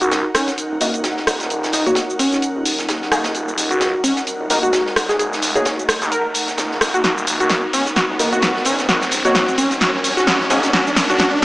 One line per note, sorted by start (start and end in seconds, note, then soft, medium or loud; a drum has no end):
0.00 0.23 C#2 medium
0.00 11.45 D#4 medium
0.00 0.33 F#4 loud
0.00 11.45 A#4 medium
0.00 11.45 F#5 medium
0.00 closed hi-hat medium
0.00 riser medium
0.00 shaker soft
0.11 snare loud
0.11 closed hi-hat medium
0.11 shaker soft
0.34 0.50 C#4 medium
0.34 cross-stick medium
0.34 snare soft
0.34 closed hi-hat medium
0.34 open hi-hat loud
0.34 shaker medium
0.47 snare soft
0.47 closed hi-hat medium
0.47 shaker soft
0.58 closed hi-hat medium
0.58 shaker soft
0.71 0.79 D#1 loud
0.81 0.92 E1 medium
0.81 0.88 A#3 medium
0.81 0.88 D#4 medium
0.81 0.88 F#4 medium
0.81 0.88 A#4 medium
0.81 closed hi-hat medium
0.81 open hi-hat loud
0.81 shaker medium
0.94 1.26 D#1 medium
0.94 closed hi-hat medium
0.94 shaker soft
1.04 snare loud
1.04 closed hi-hat medium
1.04 shaker soft
1.17 snare soft
1.27 1.49 D#1 medium
1.27 cross-stick medium
1.27 closed hi-hat medium
1.27 open hi-hat loud
1.27 shaker medium
1.40 snare soft
1.40 closed hi-hat medium
1.40 shaker soft
1.50 1.84 D#1 loud
1.50 closed hi-hat medium
1.50 shaker soft
1.63 snare medium
1.63 shaker soft
1.73 1.84 D#4 medium
1.73 snare soft
1.73 closed hi-hat medium
1.73 open hi-hat loud
1.73 shaker medium
1.86 1.92 A#3 medium
1.86 1.92 D#4 medium
1.86 1.92 F#4 medium
1.86 2.00 F#4 medium
1.86 1.92 C#5 medium
1.86 closed hi-hat soft
1.86 shaker soft
1.95 snare loud
1.95 closed hi-hat medium
1.95 shaker soft
2.10 shaker soft
2.19 2.66 C#4 loud
2.19 closed hi-hat medium
2.19 open hi-hat loud
2.19 shaker medium
2.32 snare soft
2.32 closed hi-hat medium
2.32 shaker soft
2.42 closed hi-hat medium
2.42 shaker soft
2.56 2.87 D#1 loud
2.65 closed hi-hat medium
2.65 open hi-hat loud
2.65 shaker medium
2.79 snare medium
2.79 closed hi-hat medium
2.79 shaker soft
2.89 3.10 D#2 loud
2.89 snare loud
2.89 closed hi-hat medium
2.89 shaker soft
3.02 snare soft
3.12 3.33 F#1 medium
3.12 3.19 A#3 loud
3.12 3.19 D#4 medium
3.12 3.19 F#4 medium
3.12 3.19 G#4 loud
3.12 cross-stick medium
3.12 closed hi-hat medium
3.12 open hi-hat loud
3.12 shaker medium
3.24 snare medium
3.24 closed hi-hat medium
3.24 shaker soft
3.35 3.69 D#1 medium
3.35 closed hi-hat medium
3.35 shaker soft
3.48 shaker soft
3.58 closed hi-hat medium
3.58 open hi-hat loud
3.58 shaker medium
3.71 3.92 C#2 medium
3.71 4.02 F#4 medium
3.71 closed hi-hat medium
3.71 shaker soft
3.81 snare loud
3.81 closed hi-hat medium
3.81 shaker soft
4.04 4.19 C#4 medium
4.04 closed hi-hat medium
4.04 open hi-hat loud
4.04 shaker medium
4.16 snare soft
4.16 closed hi-hat medium
4.16 shaker soft
4.27 closed hi-hat medium
4.27 shaker soft
4.40 4.49 D#1 loud
4.50 4.61 E1 medium
4.50 4.57 A#3 medium
4.50 4.57 D#4 medium
4.50 4.57 F#4 medium
4.50 4.57 A#4 loud
4.50 closed hi-hat medium
4.50 open hi-hat loud
4.50 shaker medium
4.63 4.95 D#1 loud
4.63 4.96 F#4 medium
4.63 closed hi-hat medium
4.63 shaker soft
4.73 snare loud
4.73 closed hi-hat medium
4.73 shaker soft
4.87 snare soft
4.96 5.18 D#1 medium
4.96 cross-stick medium
4.96 closed hi-hat medium
4.96 open hi-hat loud
4.96 shaker medium
5.09 5.16 G#4 medium
5.09 snare soft
5.09 closed hi-hat medium
5.09 shaker soft
5.19 5.53 D#1 loud
5.19 5.28 G#4 medium
5.19 closed hi-hat medium
5.19 shaker soft
5.33 snare medium
5.33 shaker soft
5.42 snare soft
5.42 closed hi-hat medium
5.42 open hi-hat loud
5.42 shaker medium
5.55 5.61 A#3 medium
5.55 5.61 D#4 medium
5.55 5.61 F#4 medium
5.55 5.69 G#4 medium
5.55 5.61 C#5 medium
5.55 closed hi-hat soft
5.55 shaker soft
5.65 snare loud
5.65 closed hi-hat medium
5.65 shaker soft
5.79 shaker soft
5.89 cross-stick medium
5.89 closed hi-hat medium
5.89 open hi-hat loud
5.89 shaker medium
6.01 6.10 D#2 loud
6.01 snare soft
6.01 closed hi-hat soft
6.01 shaker soft
6.12 6.27 A#4 medium
6.12 closed hi-hat medium
6.12 shaker soft
6.34 closed hi-hat medium
6.34 open hi-hat loud
6.34 shaker medium
6.48 snare soft
6.48 closed hi-hat medium
6.48 shaker soft
6.58 6.92 C#2 loud
6.58 snare loud
6.58 closed hi-hat medium
6.58 shaker soft
6.71 snare soft
6.81 cross-stick medium
6.81 closed hi-hat medium
6.81 open hi-hat loud
6.81 shaker medium
6.94 7.03 D#1 loud
6.94 7.00 F#4 medium
6.94 closed hi-hat soft
6.94 shaker soft
7.04 7.38 D#1 loud
7.04 7.12 F#4 medium
7.04 snare soft
7.04 closed hi-hat medium
7.04 shaker soft
7.18 shaker soft
7.27 closed hi-hat medium
7.27 open hi-hat loud
7.27 shaker medium
7.40 7.61 C#2 medium
7.40 7.71 F#4 medium
7.40 closed hi-hat medium
7.40 shaker soft
7.50 snare loud
7.50 snare soft
7.50 closed hi-hat medium
7.50 shaker soft
7.73 7.89 C#4 medium
7.73 snare soft
7.73 closed hi-hat medium
7.73 open hi-hat loud
7.73 shaker medium
7.86 snare soft
7.86 closed hi-hat medium
7.86 shaker soft
7.96 8.05 F#4 medium
7.96 snare medium
7.96 closed hi-hat medium
7.96 shaker soft
8.09 8.18 D#1 medium
8.19 8.30 E1 loud
8.19 8.26 A#3 medium
8.19 8.26 D#4 medium
8.19 8.26 F#4 medium
8.19 8.26 A#4 loud
8.19 closed hi-hat medium
8.19 open hi-hat loud
8.19 shaker medium
8.33 8.64 D#1 medium
8.33 8.64 F#4 medium
8.33 closed hi-hat medium
8.33 shaker soft
8.42 snare medium
8.42 snare loud
8.42 closed hi-hat medium
8.42 shaker soft
8.56 snare soft
8.65 8.87 D#1 medium
8.65 8.81 C#4 medium
8.65 closed hi-hat medium
8.65 open hi-hat loud
8.65 shaker medium
8.79 snare medium
8.79 closed hi-hat medium
8.79 shaker soft
8.89 9.23 D#1 loud
8.89 8.97 F#4 medium
8.89 snare medium
8.89 closed hi-hat medium
8.89 shaker soft
9.01 snare medium
9.01 shaker soft
9.11 snare soft
9.11 closed hi-hat medium
9.11 open hi-hat loud
9.11 shaker medium
9.25 9.30 A#3 medium
9.25 9.30 D#4 medium
9.25 9.30 F#4 medium
9.25 9.56 F#4 medium
9.25 9.30 C#5 medium
9.25 closed hi-hat medium
9.25 closed hi-hat soft
9.25 shaker soft
9.35 snare medium
9.35 snare loud
9.35 closed hi-hat medium
9.35 closed hi-hat loud
9.35 shaker soft
9.48 shaker soft
9.58 9.73 C#4 medium
9.58 closed hi-hat medium
9.58 open hi-hat loud
9.58 shaker medium
9.71 snare soft
9.71 closed hi-hat medium
9.71 shaker soft
9.81 9.89 F#4 medium
9.81 snare medium
9.81 closed hi-hat medium
9.81 shaker soft
9.94 10.26 D#1 loud
10.04 closed hi-hat medium
10.04 open hi-hat loud
10.04 shaker medium
10.17 10.48 F#4 loud
10.17 snare medium
10.17 closed hi-hat medium
10.17 shaker soft
10.27 10.49 D#2 loud
10.27 snare loud
10.27 snare medium
10.27 closed hi-hat medium
10.27 shaker soft
10.40 snare soft
10.50 10.72 F#1 medium
10.50 10.57 A#3 loud
10.50 10.66 C#4 medium
10.50 10.57 D#4 medium
10.50 10.57 F#4 medium
10.50 10.57 G#4 loud
10.50 closed hi-hat medium
10.50 open hi-hat loud
10.50 shaker medium
10.63 snare loud
10.63 closed hi-hat medium
10.63 shaker soft
10.73 10.82 F#4 medium
10.73 snare medium
10.73 closed hi-hat medium
10.73 shaker soft
10.87 shaker soft
10.96 snare medium
10.96 closed hi-hat medium
10.96 open hi-hat loud
10.96 shaker medium
11.09 11.30 C#2 loud
11.09 11.18 F#4 medium
11.09 closed hi-hat medium
11.09 shaker soft
11.19 11.28 F#4 medium
11.19 snare medium
11.19 snare loud
11.19 closed hi-hat medium
11.19 shaker soft